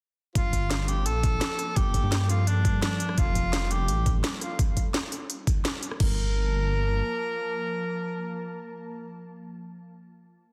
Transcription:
0.35 detuned saw bass G1, ambient pad F3 A#3 A4, tenor saxophone F4, kick, closed hi-hat
0.53 kick, closed hi-hat
0.71 snare, closed hi-hat
0.88 tenor saxophone G4, closed hi-hat
1.06 detuned saw bass A#1, tenor saxophone A4, closed hi-hat
1.23 kick, closed hi-hat
1.41 snare, closed hi-hat
1.59 cross-stick, closed hi-hat
1.76 detuned saw bass G1, tenor saxophone G4, kick, closed hi-hat
1.94 kick, closed hi-hat
2.03 detuned saw bass G2
2.12 snare, closed hi-hat
2.21 cross-stick
2.29 tenor saxophone F4, closed hi-hat
2.47 tenor saxophone D4, closed hi-hat
2.65 kick, closed hi-hat
2.82 tenor saxophone D4, snare, closed hi-hat
3.00 closed hi-hat
3.09 cross-stick
3.18 detuned saw bass F1, tenor saxophone F4, kick, closed hi-hat
3.35 kick, closed hi-hat
3.53 snare, closed hi-hat
3.71 tenor saxophone G4, closed hi-hat
3.88 detuned saw bass A1, closed hi-hat
4.06 kick, closed hi-hat
4.24 snare, closed hi-hat
4.41 tenor saxophone F4, cross-stick, closed hi-hat
4.59 kick, closed hi-hat
4.77 kick, closed hi-hat
4.94 snare, closed hi-hat
5.03 cross-stick
5.12 open hi-hat
5.30 closed hi-hat
5.47 kick, closed hi-hat
5.65 snare, closed hi-hat
5.83 closed hi-hat
5.91 cross-stick
6.00 detuned saw bass G1, ambient pad F3 A#3 A5, tenor saxophone A#4, kick, crash

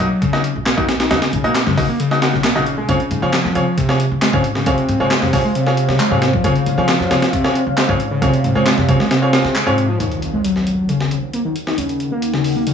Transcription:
Already playing: analog synth lead F#3
0.00 closed hi-hat
0.22 analog synth lead C#3, kick, closed hi-hat
0.33 grand piano A#3 D#4 F#4 D#5, snare
0.44 analog synth lead C#3, closed hi-hat
0.56 upright bass A#1
0.66 analog synth lead A#3, snare, clap, closed hi-hat
0.77 upright bass A#1, analog synth lead D#3, grand piano A#3 D#4 F#4 D#5, kick
0.89 snare, closed hi-hat
1.00 analog synth lead D#3, snare, closed hi-hat
1.11 upright bass D#2, analog synth lead C#3, grand piano A#3 D#4 F#4 D#5, snare, closed hi-hat
1.22 snare, closed hi-hat
1.33 upright bass A#1, closed hi-hat
1.44 upright bass A#1, grand piano A#3 D#4 F#4 D#5, analog synth lead A#3
1.55 snare, clap, closed hi-hat
1.67 upright bass F#2, analog synth lead C#3, snare
1.77 upright bass A#1, grand piano A#3 D#4 F#4 D#5, kick, open hi-hat
1.89 analog synth lead A#3
2.00 analog synth lead C#3, closed hi-hat
2.11 grand piano A#3 D#4 F#4 D#5, snare
2.22 grand piano A#3 D#4 F#4 F#5, snare, closed hi-hat
2.33 upright bass A#1, snare
2.44 analog synth lead A#3, snare, clap, closed hi-hat
2.56 upright bass A#1, analog synth lead C#3, grand piano A#3 D#4 F#4 D#5, snare
2.66 closed hi-hat
2.78 analog synth lead G#3
2.89 upright bass C#2, analog synth lead C#3, grand piano C4 F4 G#4 C#5, ambient pad C5 C#5 F5, kick, closed hi-hat
3.00 closed hi-hat
3.11 upright bass G#2, closed hi-hat
3.22 upright bass C#3, analog synth lead F3, grand piano C4 F4 G#4 C#5
3.33 analog synth lead F3, snare, clap, closed hi-hat
3.44 upright bass F2, snare
3.55 upright bass C#3, grand piano C4 F4 G#4 C#5, closed hi-hat
3.78 analog synth lead C3, kick, closed hi-hat
3.89 grand piano C4 F4 G#4 C#5, snare
4.00 analog synth lead C3, closed hi-hat
4.11 upright bass C#3
4.22 analog synth lead G#3, snare, clap, closed hi-hat
4.33 upright bass G#2, analog synth lead C#3, grand piano C4 F4 G#4 C#5, kick
4.44 closed hi-hat
4.55 analog synth lead C#3, snare
4.66 upright bass C#2, analog synth lead C3, grand piano C4 F4 G#4 C#5, kick, closed hi-hat
4.78 closed hi-hat
4.89 upright bass G#2, closed hi-hat
5.00 upright bass C#3, analog synth lead G#3, grand piano C4 F4 G#4 C#5
5.11 snare, clap, closed hi-hat
5.22 upright bass F2, analog synth lead C3, snare
5.33 upright bass C#3, grand piano C4 F4 G#4 C#5, kick, open hi-hat
5.45 analog synth lead G#3
5.55 analog synth lead C3, closed hi-hat
5.67 grand piano C4 F4 G#4 C#5, snare
5.77 closed hi-hat
5.89 upright bass C#3, snare
6.00 analog synth lead G#3, clap, closed hi-hat
6.11 upright bass G#2, analog synth lead C3, grand piano C4 F4 G#4 C#5
6.22 snare, closed hi-hat
6.33 analog synth lead F3, kick
6.44 upright bass C#2, analog synth lead C#3, grand piano C4 F4 G#4 C#5, kick, closed hi-hat
6.55 closed hi-hat
6.66 upright bass G#2, closed hi-hat
6.78 upright bass C#3, analog synth lead F3, grand piano C4 F4 G#4 C#5
6.89 analog synth lead F3, snare, clap, closed hi-hat
7.00 upright bass F2, snare
7.11 upright bass C#3, grand piano C4 F4 G#4 C#5, snare, closed hi-hat
7.22 snare, closed hi-hat
7.33 analog synth lead C3, kick, closed hi-hat
7.44 grand piano C4 F4 G#4 C#5, snare
7.55 analog synth lead C3, closed hi-hat
7.67 upright bass C#3
7.77 analog synth lead G#3, snare, clap, closed hi-hat
7.89 upright bass G#2, analog synth lead C#3, grand piano C4 F4 G#4 C#5, kick
8.00 closed hi-hat
8.11 analog synth lead C#3
8.22 upright bass C#2, analog synth lead C3, grand piano C4 F4 G#4 C#5, kick, closed hi-hat
8.34 closed hi-hat
8.44 upright bass G#2, closed hi-hat
8.55 upright bass C#3, analog synth lead G#3, grand piano C4 F4 G#4 C#5
8.66 snare, clap, closed hi-hat
8.78 upright bass F2, analog synth lead C3, snare
8.88 upright bass C#3, grand piano C4 F4 G#4 C#5, kick, closed hi-hat
9.00 analog synth lead G#3, snare
9.11 analog synth lead C3, snare, closed hi-hat
9.22 grand piano C4 F4 G#4 C#5
9.33 grand piano C4 F4 G#4 F5, snare, closed hi-hat
9.45 upright bass C#3, snare
9.55 analog synth lead G#3, clap, closed hi-hat
9.67 upright bass G#2, analog synth lead C3, grand piano C4 F4 G#4 C#5, closed hi-hat
9.78 closed hi-hat
9.89 analog synth lead F3
10.00 upright bass D#2, analog synth lead D#3, ambient pad D#4 A#4 F#5, closed hi-hat, impact
10.12 closed hi-hat
10.22 closed hi-hat
10.34 analog synth lead G#3
10.44 analog synth lead F#3, closed hi-hat
10.56 snare
10.67 closed hi-hat
10.89 analog synth lead C#3, closed hi-hat
11.01 snare
11.11 analog synth lead C#3, closed hi-hat
11.33 analog synth lead A#3, closed hi-hat
11.45 analog synth lead D#3
11.56 closed hi-hat
11.67 analog synth lead D#3, snare
11.78 upright bass D#2, analog synth lead C#3, closed hi-hat
11.89 closed hi-hat
12.00 closed hi-hat
12.12 analog synth lead A#3
12.22 closed hi-hat
12.34 analog synth lead C#3, snare
12.44 open hi-hat
12.56 analog synth lead A#3
12.67 analog synth lead C#3, closed hi-hat

